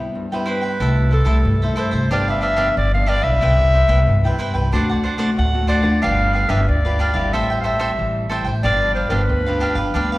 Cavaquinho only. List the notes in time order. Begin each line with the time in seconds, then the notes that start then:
0.32 B4 C5 G5
0.46 E4 B4 C5 G5
0.61 B4 C5 G5
0.80 E4 A4 E5
1.11 E4 A4 C5 E5
1.25 E4 A4 C5 E5
1.62 A4 C5 E5
1.76 E4 A4 C5 E5
1.91 A4 C5 E5
2.11 D4 G4 B4 F5
2.28 G4 B4 F5
2.41 D4 G4 B4 F5
2.56 D4 G4 B4 F5
3.06 D4 G4 B4 F5
3.21 G4 B4 F5
3.41 E4 B4 C5 G5
3.73 E4 B4 C5 G5
3.88 E4 B4 C5 G5
4.25 B4 C5 G5
4.38 E4 B4 C5 G5
4.54 B4 C5 G5
4.73 D4 C5 D5 F#5
4.89 C5 D5 F#5
5.04 D4 C5 D5 F#5
5.18 D4 C5 D5 F#5
5.67 D4 C5 D5 F#5
5.82 C5 D5 F#5
6.02 D4 G4 B4 F5
6.33 D4 G4 B4 F5
6.49 D4 G4 B4 F5
6.85 G4 B4 F5
6.99 D4 G4 B4 F5
7.14 G4 B4 F5
7.33 A4 C5 E5 G5
7.50 C5 E5 G5
7.64 A4 C5 E5 G5
7.79 A4 C5 E5 G5
8.30 A4 C5 E5 G5
8.45 C5 E5 G5
8.63 D4 G4 B4 F5
8.94 D4 G4 B4 F5
9.10 D4 G4 B4 F5
9.46 G4 B4 F5
9.60 D4 G4 B4 F5
9.75 G4 B4 F5
9.94 D4 G4 B4 F5
10.12 G4 B4 F5